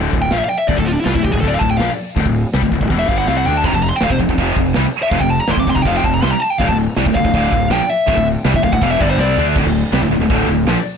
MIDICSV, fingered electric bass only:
0, 0, Header, 1, 2, 480
1, 0, Start_track
1, 0, Key_signature, -1, "minor"
1, 0, Tempo, 369458
1, 899, Time_signature, 4, 2, 24, 8
1, 14259, End_track
2, 0, Start_track
2, 0, Title_t, "Fingered electric bass"
2, 0, Program_c, 0, 33
2, 0, Note_on_c, 0, 26, 96
2, 156, Note_off_c, 0, 26, 0
2, 166, Note_on_c, 0, 26, 77
2, 396, Note_off_c, 0, 26, 0
2, 415, Note_on_c, 0, 34, 93
2, 529, Note_off_c, 0, 34, 0
2, 895, Note_on_c, 0, 26, 104
2, 1008, Note_off_c, 0, 26, 0
2, 1017, Note_on_c, 0, 26, 90
2, 1241, Note_off_c, 0, 26, 0
2, 1375, Note_on_c, 0, 36, 102
2, 1488, Note_off_c, 0, 36, 0
2, 1498, Note_on_c, 0, 26, 81
2, 1610, Note_off_c, 0, 26, 0
2, 1616, Note_on_c, 0, 26, 78
2, 1729, Note_off_c, 0, 26, 0
2, 1738, Note_on_c, 0, 26, 91
2, 1850, Note_off_c, 0, 26, 0
2, 1861, Note_on_c, 0, 26, 90
2, 2082, Note_off_c, 0, 26, 0
2, 2093, Note_on_c, 0, 26, 79
2, 2318, Note_off_c, 0, 26, 0
2, 2342, Note_on_c, 0, 34, 106
2, 2452, Note_off_c, 0, 34, 0
2, 2810, Note_on_c, 0, 26, 101
2, 2922, Note_off_c, 0, 26, 0
2, 2930, Note_on_c, 0, 26, 85
2, 3157, Note_off_c, 0, 26, 0
2, 3305, Note_on_c, 0, 36, 106
2, 3409, Note_off_c, 0, 36, 0
2, 3417, Note_on_c, 0, 26, 77
2, 3526, Note_off_c, 0, 26, 0
2, 3534, Note_on_c, 0, 26, 82
2, 3647, Note_off_c, 0, 26, 0
2, 3658, Note_on_c, 0, 26, 89
2, 3769, Note_off_c, 0, 26, 0
2, 3776, Note_on_c, 0, 28, 94
2, 3999, Note_off_c, 0, 28, 0
2, 4013, Note_on_c, 0, 31, 88
2, 4238, Note_off_c, 0, 31, 0
2, 4261, Note_on_c, 0, 36, 95
2, 4482, Note_off_c, 0, 36, 0
2, 4518, Note_on_c, 0, 38, 94
2, 4724, Note_off_c, 0, 38, 0
2, 4732, Note_on_c, 0, 29, 109
2, 4846, Note_off_c, 0, 29, 0
2, 4851, Note_on_c, 0, 29, 84
2, 5077, Note_off_c, 0, 29, 0
2, 5228, Note_on_c, 0, 26, 100
2, 5322, Note_off_c, 0, 26, 0
2, 5330, Note_on_c, 0, 29, 78
2, 5445, Note_off_c, 0, 29, 0
2, 5451, Note_on_c, 0, 29, 80
2, 5565, Note_off_c, 0, 29, 0
2, 5576, Note_on_c, 0, 29, 88
2, 5684, Note_off_c, 0, 29, 0
2, 5692, Note_on_c, 0, 29, 91
2, 5917, Note_off_c, 0, 29, 0
2, 5928, Note_on_c, 0, 29, 79
2, 6155, Note_off_c, 0, 29, 0
2, 6204, Note_on_c, 0, 36, 92
2, 6303, Note_off_c, 0, 36, 0
2, 6648, Note_on_c, 0, 29, 103
2, 6761, Note_off_c, 0, 29, 0
2, 6769, Note_on_c, 0, 29, 84
2, 6996, Note_off_c, 0, 29, 0
2, 7137, Note_on_c, 0, 26, 98
2, 7230, Note_off_c, 0, 26, 0
2, 7238, Note_on_c, 0, 29, 80
2, 7359, Note_off_c, 0, 29, 0
2, 7367, Note_on_c, 0, 29, 83
2, 7478, Note_off_c, 0, 29, 0
2, 7486, Note_on_c, 0, 29, 89
2, 7593, Note_off_c, 0, 29, 0
2, 7600, Note_on_c, 0, 29, 91
2, 7832, Note_off_c, 0, 29, 0
2, 7847, Note_on_c, 0, 29, 82
2, 8076, Note_off_c, 0, 29, 0
2, 8102, Note_on_c, 0, 36, 101
2, 8212, Note_off_c, 0, 36, 0
2, 8576, Note_on_c, 0, 26, 108
2, 8679, Note_off_c, 0, 26, 0
2, 8687, Note_on_c, 0, 26, 85
2, 8916, Note_off_c, 0, 26, 0
2, 9056, Note_on_c, 0, 36, 107
2, 9162, Note_off_c, 0, 36, 0
2, 9170, Note_on_c, 0, 26, 80
2, 9286, Note_off_c, 0, 26, 0
2, 9296, Note_on_c, 0, 26, 85
2, 9409, Note_off_c, 0, 26, 0
2, 9415, Note_on_c, 0, 26, 91
2, 9523, Note_off_c, 0, 26, 0
2, 9531, Note_on_c, 0, 26, 100
2, 9758, Note_off_c, 0, 26, 0
2, 9775, Note_on_c, 0, 26, 82
2, 9995, Note_off_c, 0, 26, 0
2, 10003, Note_on_c, 0, 34, 98
2, 10122, Note_off_c, 0, 34, 0
2, 10499, Note_on_c, 0, 26, 105
2, 10612, Note_off_c, 0, 26, 0
2, 10619, Note_on_c, 0, 26, 90
2, 10843, Note_off_c, 0, 26, 0
2, 10979, Note_on_c, 0, 36, 104
2, 11085, Note_off_c, 0, 36, 0
2, 11092, Note_on_c, 0, 26, 84
2, 11208, Note_off_c, 0, 26, 0
2, 11224, Note_on_c, 0, 26, 81
2, 11335, Note_off_c, 0, 26, 0
2, 11340, Note_on_c, 0, 26, 88
2, 11446, Note_off_c, 0, 26, 0
2, 11454, Note_on_c, 0, 28, 89
2, 11681, Note_off_c, 0, 28, 0
2, 11703, Note_on_c, 0, 31, 96
2, 11918, Note_off_c, 0, 31, 0
2, 11926, Note_on_c, 0, 36, 104
2, 12157, Note_off_c, 0, 36, 0
2, 12172, Note_on_c, 0, 38, 102
2, 12400, Note_off_c, 0, 38, 0
2, 12421, Note_on_c, 0, 26, 100
2, 12531, Note_off_c, 0, 26, 0
2, 12538, Note_on_c, 0, 26, 89
2, 12764, Note_off_c, 0, 26, 0
2, 12899, Note_on_c, 0, 36, 101
2, 13012, Note_off_c, 0, 36, 0
2, 13019, Note_on_c, 0, 26, 78
2, 13120, Note_off_c, 0, 26, 0
2, 13128, Note_on_c, 0, 26, 83
2, 13234, Note_off_c, 0, 26, 0
2, 13242, Note_on_c, 0, 26, 89
2, 13364, Note_off_c, 0, 26, 0
2, 13381, Note_on_c, 0, 26, 100
2, 13596, Note_off_c, 0, 26, 0
2, 13604, Note_on_c, 0, 26, 85
2, 13837, Note_off_c, 0, 26, 0
2, 13849, Note_on_c, 0, 34, 95
2, 13968, Note_off_c, 0, 34, 0
2, 14259, End_track
0, 0, End_of_file